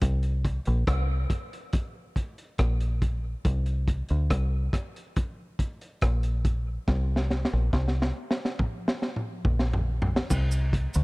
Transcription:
0.02 C2, kick, closed hi-hat
0.23 closed hi-hat
0.45 kick, closed hi-hat
0.65 A#1, closed hi-hat
0.87 C2, kick, cross-stick, closed hi-hat
1.30 kick, closed hi-hat
1.53 closed hi-hat
1.73 kick, closed hi-hat
2.16 kick, closed hi-hat
2.38 closed hi-hat
2.58 A#1, kick, cross-stick, closed hi-hat
2.80 closed hi-hat
3.02 kick, closed hi-hat
3.45 C2, kick, closed hi-hat
3.66 closed hi-hat
3.88 kick, closed hi-hat
4.09 D2, closed hi-hat
4.30 C2, kick, cross-stick, closed hi-hat
4.73 kick, cross-stick, closed hi-hat
4.96 closed hi-hat
5.16 kick, closed hi-hat
5.59 kick, closed hi-hat
5.81 closed hi-hat
6.01 A#1, kick, cross-stick, closed hi-hat
6.23 closed hi-hat
6.45 kick, closed hi-hat
6.88 C2, kick, snare
7.16 snare
7.30 snare
7.45 snare
7.53 A#1
7.73 C2, kick, snare
7.88 snare
8.02 snare
8.31 snare
8.45 snare
8.59 kick, mid tom
8.88 snare
9.02 snare
9.16 mid tom
9.45 A#1, kick, floor tom
9.59 snare
9.73 floor tom
10.02 floor tom
10.16 snare
10.30 C2, kick, crash, cabasa
10.51 closed hi-hat, cabasa
10.73 kick, closed hi-hat
10.94 D2, closed hi-hat, cabasa

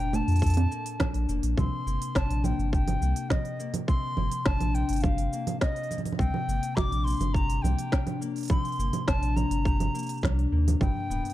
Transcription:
Already playing: A#2 A#3 D4 F4 G5
0.00 F1
0.13 A#3 A5, low conga, shaker
0.28 F2, open hi-hat, shaker
0.32 open hi-hat
0.36 open hi-hat
0.39 A4, kick, open hi-hat
0.43 open hi-hat, shaker
0.46 open hi-hat
0.50 open hi-hat
0.54 open hi-hat
0.57 open hi-hat, low conga
0.71 A#3, shaker
0.86 open hi-hat, shaker
1.00 D4, kick, snare, low conga, shaker
1.14 A#1, open hi-hat
1.29 F1 A#3, shaker
1.43 A#1, open hi-hat, shaker
1.57 C2 C3 C6, kick, low conga, shaker
1.86 G1 A#3, shaker
2.02 open hi-hat, shaker
2.15 G1 D4 A5, kick, snare, shaker
2.30 A#1, open hi-hat
2.44 A#3 G5, low conga, shaker
2.59 G1, shaker
2.73 G4 G5, kick, shaker
2.88 open hi-hat, low conga
3.02 C2 A#3, shaker
3.16 open hi-hat, shaker
3.30 D#5, kick, snare, low conga, shaker
3.45 open hi-hat
3.59 A#3, shaker
3.74 open hi-hat, low conga, shaker
3.88 C3 C6, kick, shaker
4.17 G1 A#3, low conga
4.31 open hi-hat, shaker
4.45 G1 D4 A5, kick, snare
4.60 A#1, open hi-hat, low conga
4.75 A#3 G5, shaker
4.89 G1, open hi-hat, shaker
4.93 open hi-hat
4.96 open hi-hat
5.00 G4 F5, kick, open hi-hat, low conga, shaker
5.18 open hi-hat
5.33 A#3, shaker
5.47 open hi-hat, low conga, shaker
5.60 D#5, kick, snare, shaker
5.76 open hi-hat
5.83 open hi-hat
5.90 A#3, open hi-hat, low conga, shaker
5.98 open hi-hat, low conga
6.06 open hi-hat, low conga, shaker
6.12 low conga
6.18 C2 C3 G5, kick, shaker
6.34 low conga
6.48 G1 A#3, shaker
6.63 open hi-hat, shaker
6.76 G1 D4 D6, kick, snare, low conga, shaker
6.91 A#1, open hi-hat
7.04 A#3 C6, shaker
7.10 shaker
7.12 shaker
7.14 shaker
7.17 shaker
7.19 G1, open hi-hat, low conga, shaker
7.21 shaker
7.34 G4 A#5, kick, shaker
7.50 open hi-hat
7.62 C2 A#3 G5, low conga, shaker
7.79 open hi-hat, shaker
7.92 D4, kick, snare, shaker
8.07 open hi-hat, low conga
8.21 A#3, shaker
8.36 open hi-hat, shaker
8.38 open hi-hat
8.41 open hi-hat
8.43 open hi-hat
8.45 open hi-hat
8.48 C3 C6, kick, open hi-hat, low conga, shaker
8.65 open hi-hat
8.68 open hi-hat
8.72 open hi-hat
8.76 G1 A#3, open hi-hat
8.80 shaker
8.93 open hi-hat, low conga
9.08 G1 D4 A5, kick, snare, shaker
9.22 A#1, open hi-hat
9.36 A#3 A#5, low conga, shaker
9.50 G1, open hi-hat, shaker
9.65 G4, kick, shaker
9.80 open hi-hat, low conga
9.94 A#3, shaker
9.99 shaker
10.03 shaker
10.06 open hi-hat, shaker
10.10 shaker
10.14 shaker
10.17 shaker
10.21 C2 D4, kick, snare, low conga, shaker
10.25 shaker
10.39 open hi-hat
10.52 D#2 A#3
10.68 open hi-hat, low conga, shaker
10.80 G1 G2 G5, kick, low conga, shaker
11.10 D1 B3, shaker
11.25 open hi-hat, shaker
11.30 open hi-hat

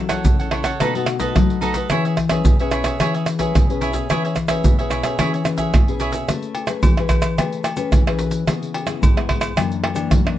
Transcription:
Already playing: F#3
0.09 C#4 E4 A4 C#5 F#5, pandeiro, tamborim, shaker, surdo
0.25 C#3, pandeiro, shaker, surdo
0.39 A4 C#5 F#5, pandeiro, shaker
0.51 C#4 E4 A4 C#5 F#5, pandeiro, tamborim
0.64 A4 C#5 F#5, pandeiro, tamborim, shaker, surdo
0.80 B2 A3 D#4 F#4 A4 B4 D#5, pandeiro, tamborim, shaker, surdo
0.95 A3 D#4 F#4 A4 B4 D#5, pandeiro, shaker
1.06 muted cavaquinho stroke, pandeiro, tamborim, shaker
1.19 A3 D#4 F#4 A4 B4 D#5, pandeiro, shaker, surdo
1.35 F#3, pandeiro, tamborim, shaker, surdo
1.50 pandeiro, shaker
1.61 A3 D#4 F#4 A4 B4 D#5, pandeiro, shaker
1.74 A4 B4 D#5, pandeiro, shaker, surdo
1.90 E3 C#4 E4 G#4 B4 C#5 E5, pandeiro, tamborim, shaker, surdo
2.05 G#4 C#5 E5, pandeiro, shaker
2.17 muted cavaquinho stroke, pandeiro, tamborim, shaker, surdo
2.29 C#4 G#4 B4 C#5 E5, pandeiro, tamborim, shaker, surdo
2.45 B2, pandeiro, shaker, surdo
2.59 C#4 G#4 B4 C#5 E5, pandeiro, shaker
2.71 E4 G#4 C#5 E5, pandeiro, tamborim, shaker
2.84 G#4 C#5 E5, pandeiro, tamborim, shaker, surdo
3.00 E3 C#4 E4 G#4 B4 C#5 E5, pandeiro, tamborim, shaker, surdo
3.14 G#4 C#5 E5, pandeiro, shaker
3.26 muted cavaquinho stroke, pandeiro, tamborim, shaker
3.39 C#4 G#4 B4 C#5 E5, pandeiro, shaker, surdo
3.55 B2, pandeiro, tamborim, shaker, surdo
3.70 C#4 G#4 B4, pandeiro, shaker
3.81 E4 G#4 C#5 E5, pandeiro, shaker
3.93 C#4 G#4 B4 C#5 E5, pandeiro, shaker, surdo
4.10 E3 C#4 E4 G#4 B4 C#5 E5, pandeiro, tamborim, shaker, surdo
4.25 G#4 C#5 E5, pandeiro, shaker
4.36 muted cavaquinho stroke, pandeiro, tamborim, shaker, surdo
4.48 C#4 G#4 B4 C#5 E5, pandeiro, tamborim, shaker, surdo
4.64 B2, pandeiro, shaker, surdo
4.79 C#4 G#4 B4 C#5 E5, pandeiro, shaker
4.90 E4 G#4 C#5 E5, pandeiro, tamborim, shaker
5.03 C#4 G#4 B4 C#5 E5, pandeiro, tamborim, shaker, surdo
5.19 E3 C#4 E4 G#4 B4 C#5 E5, pandeiro, tamborim, shaker, surdo
5.33 G#4 C#5 E5, pandeiro, shaker
5.45 C#4 G#4 B4, muted cavaquinho stroke, pandeiro, tamborim, shaker
5.58 G#4 C#5 E5, pandeiro, shaker, surdo
5.74 pandeiro, tamborim, shaker, surdo
5.88 C#4 G#4 B4, pandeiro, shaker
6.00 E4 G#4 C#5 E5, pandeiro, shaker
6.12 G#4 C#5 E5, pandeiro, shaker, surdo
6.29 A3 C#4 G#4 B4, pandeiro, tamborim, shaker, surdo
6.43 pandeiro, shaker
6.55 pandeiro, low agogo
6.67 C#4 G#4 B4, pandeiro, tamborim, shaker
6.83 E3, pandeiro, high agogo, shaker, surdo
6.97 C#4 G#4 B4, pandeiro, tamborim, shaker
7.09 pandeiro, tamborim, high agogo, shaker, surdo
7.22 pandeiro, tamborim, high agogo, shaker
7.38 A3 C#4 G#4 B4, pandeiro, tamborim, low agogo, shaker, surdo
7.53 pandeiro, shaker
7.64 pandeiro, tamborim, low agogo, shaker
7.77 C#4 G#4 B4, pandeiro, low agogo, shaker
7.92 E3, pandeiro, tamborim, shaker, surdo
8.07 C#4 G#4 B4, pandeiro, tamborim, shaker
8.19 pandeiro, shaker
8.31 pandeiro, shaker
8.47 C#3 B3 E4 G#4, pandeiro, tamborim, shaker, surdo
8.63 pandeiro, shaker
8.74 pandeiro, low agogo
8.86 B3 E4 G#4, pandeiro, tamborim, shaker
9.01 G#2, pandeiro, high agogo, shaker, surdo
9.16 B3 E4 G#4, pandeiro, tamborim, shaker
9.29 pandeiro, tamborim, high agogo, surdo
9.41 pandeiro, tamborim, high agogo, shaker
9.56 F#2 E3 A#3 D4, pandeiro, tamborim, low agogo, shaker, surdo
9.72 pandeiro, shaker
9.84 pandeiro, tamborim, low agogo
9.94 E3 A#3 D4, pandeiro, low agogo, shaker
10.11 F#2, pandeiro, tamborim, shaker, surdo
10.25 E3 A#3 D4, pandeiro, tamborim, shaker

